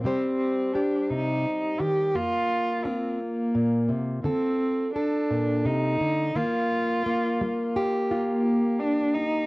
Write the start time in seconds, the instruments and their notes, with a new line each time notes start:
0.03 steel-string acoustic guitar C3 G3 G4 C5, cello C4
0.73 cello D4, steel-string acoustic guitar G4
1.10 steel-string acoustic guitar C3, cello D#4
1.80 steel-string acoustic guitar D#3, cello G4
2.14 steel-string acoustic guitar F2 A#3, cello F4
2.85 cello C4, steel-string acoustic guitar F4
3.21 cello A#3
3.55 steel-string acoustic guitar A#2
3.89 steel-string acoustic guitar C3
4.24 steel-string acoustic guitar D3 A4, cello C4
4.94 cello D4, steel-string acoustic guitar A4
5.31 steel-string acoustic guitar A#2
5.65 steel-string acoustic guitar C3, cello D#4
6.00 steel-string acoustic guitar D3
6.35 steel-string acoustic guitar D#3 A#3, cello F4
7.06 steel-string acoustic guitar A#3
7.41 steel-string acoustic guitar G3
7.76 steel-string acoustic guitar G4
8.10 cello A#3, steel-string acoustic guitar F4
8.79 cello D4
9.14 cello D#4